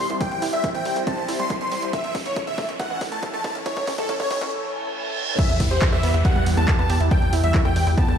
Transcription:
Already playing: riser
0.10 C2 E4, closed hi-hat
0.21 G3 G5, kick, closed hi-hat
0.31 C2 G3, closed hi-hat
0.42 C2 E4, open hi-hat
0.53 C2 E5, closed hi-hat
0.64 E4, kick, closed hi-hat
0.75 C2 E3 G5, closed hi-hat
0.85 C2 G3, open hi-hat
0.96 C2 E4, closed hi-hat
1.07 C4 A5, kick, closed hi-hat
1.18 C2
1.28 C2 E4, open hi-hat
1.39 C2 G3 C6, closed hi-hat
1.50 kick, closed hi-hat
1.61 C2 E3 C6, closed hi-hat
1.72 C2 G3, open hi-hat
1.82 C2, closed hi-hat
1.93 C#3 E5, kick, closed hi-hat
2.04 C#2, closed hi-hat
2.15 C#2 C#3, kick, open hi-hat
2.26 C#2 E4 C#5, closed hi-hat
2.36 kick, closed hi-hat
2.47 C#2 C#3 E5, closed hi-hat
2.58 C#2 A3, kick, open hi-hat
2.69 C#2 C#5, closed hi-hat
2.80 E3 F#5, kick, closed hi-hat
2.90 C#2 E3
3.01 C#2, kick, open hi-hat
3.12 C#2 A3 A5, closed hi-hat
3.23 C#3, kick, closed hi-hat
3.33 C#2 A3 A5, closed hi-hat
3.44 C#2 E4, kick, open hi-hat
3.55 C#2 C#4, closed hi-hat
3.66 E3 C#5, kick, closed hi-hat
3.77 C#2 E3, kick, closed hi-hat
3.87 C#2 C#4, kick, open hi-hat
3.98 C#2 A4, kick, closed hi-hat
4.09 C#4, kick, closed hi-hat
4.20 C#2 C#3 C#5, kick, closed hi-hat
4.31 C#2 E3, kick, open hi-hat
4.41 C#2 C#4, kick, closed hi-hat
4.52 reverse cymbal
5.39 E3 E5, kick, closed hi-hat, crash, downlifter
5.49 E2, closed hi-hat
5.60 E2 E3, kick, open hi-hat, ride
5.71 E2 G4 C5, closed hi-hat
5.82 kick, clap, closed hi-hat
5.92 E2 E3 E5, cross-stick, closed hi-hat
6.03 E2 B3, open hi-hat, ride
6.14 E2 E5, closed hi-hat
6.25 G3 F#5, kick, closed hi-hat
6.36 E2 G3, closed hi-hat
6.46 E2, open hi-hat, ride
6.57 E2 B3 A5, cross-stick, closed hi-hat
6.68 E3, kick, clap, closed hi-hat
6.79 E2 B3 A5, closed hi-hat
6.90 E2 G4, open hi-hat, ride
7.00 E2 E4, closed hi-hat
7.11 G3 G5, kick, closed hi-hat
7.22 E2 G3, closed hi-hat
7.33 E2 E4, open hi-hat, ride
7.44 E2 E5, closed hi-hat
7.54 E4, kick, clap, closed hi-hat
7.65 E2 E3 G5, cross-stick, closed hi-hat
7.76 E2 G3, open hi-hat, ride
7.87 E2 E4, open hi-hat
7.98 B3 A5, kick, closed hi-hat
8.08 E2, cross-stick, closed hi-hat

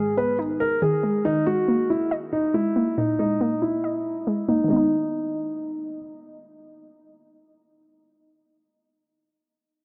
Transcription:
Already playing: G#2 D#3 G#3 G#4
0.17 B3 B4
0.39 D#4
0.60 A#4
0.82 D#3 G#4
1.03 G#3
1.25 D#3 D#4
1.46 G#3 F#4
1.68 A#3
1.90 E4
2.11 D#5
2.33 D#4
2.54 G#3 E4
2.76 A#3
2.98 A#2 D#4
3.19 G#3 D#4
3.41 A#3
3.62 E4
3.84 D#5
4.27 G#3
4.48 A#3 D#4
4.64 D#3 G#3
4.70 B3 D#4
4.76 D#4

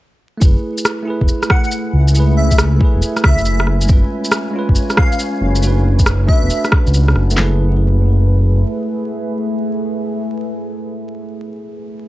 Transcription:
0.38 F#1 A3 E4 E5 G#5 B5, shaker
0.42 G#4 B4, kick
0.78 shaker
0.85 cross-stick, shaker
1.03 A3 E4
1.08 G#4 B4
1.21 E1, kick
1.28 shaker
1.43 cross-stick, shaker
1.50 F#5, kick, cross-stick
1.64 F#5, shaker
1.71 shaker
1.93 C#2
2.08 A3, shaker
2.14 E4 G#4, shaker
2.20 B4
2.37 E5
2.51 E5, kick, shaker
2.58 cross-stick, shaker
2.76 A3 E4
2.81 G#4 B4, kick
2.94 E1
3.02 shaker
3.16 cross-stick, shaker
3.24 C#2 E5, kick, cross-stick
3.38 F#1, shaker
3.45 shaker
3.60 cross-stick
3.67 F#1, cross-stick
3.81 G#3, shaker
3.88 F#1 C#4 F4 B4 C#5 F5 G#5 C#6, kick, shaker
3.93 B4
4.25 shaker
4.32 cross-stick, shaker
4.51 G#3 C#4
4.56 F4 B4
4.69 F#1, kick
4.75 shaker
4.90 cross-stick, shaker
4.97 F5, kick, cross-stick
5.12 F5, shaker
5.19 shaker
5.41 F#1
5.55 A3, shaker
5.62 D4 F#4 F#5 A5, shaker
5.67 B4
5.99 kick, shaker
6.06 cross-stick, shaker
6.24 A3 D4 E5
6.29 F#4 B4, kick
6.42 E1
6.50 shaker
6.65 cross-stick, shaker
6.72 kick, cross-stick
6.87 C#2, shaker
6.94 C#2, shaker
7.08 cross-stick
7.15 F#1, cross-stick
7.30 A3, shaker
7.36 F#1 A3 E4 G#4 B4 E5, snare, clap
7.44 B4

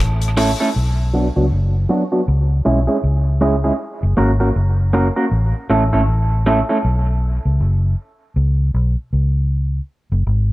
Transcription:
0.00 A1
0.22 closed hi-hat
0.37 A3 C#4 E4 A4, open hi-hat
0.60 A3 C#4 E4 A4
0.76 B1
1.14 F#3 B3 D4 F#4
1.36 C#2 F#3 B3 D4 F#4
1.52 F#1
1.89 F#3 B3 D4 F#4
2.12 F#3 B3 D4 F#4
2.28 C#2
2.65 B1 G#3 C#4 E4 G#4
2.87 G#3 C#4 E4 G#4
3.04 C#2
3.41 G#3 C#4 E4 G#4
3.64 G#3 C#4 E4 G#4
4.03 F#1
4.17 G#1 A#3 C#4 F#4 A#4
4.40 A#3 C#4 F#4 A#4
4.56 F#1
4.93 A#3 C#4 F#4 A#4
5.16 A#3 C#4 F#4 A#4
5.31 A1
5.70 A1 A3 C#4 E4 A4
5.93 G#1 A3 C#4 E4 A4
6.08 A1
6.46 A3 C#4 E4 A4
6.69 A3 C#4 E4 A4
6.85 B1
7.45 C#2
7.60 F#1
8.36 C#2
8.74 B1
9.13 C#2
10.12 F#1
10.27 G#1

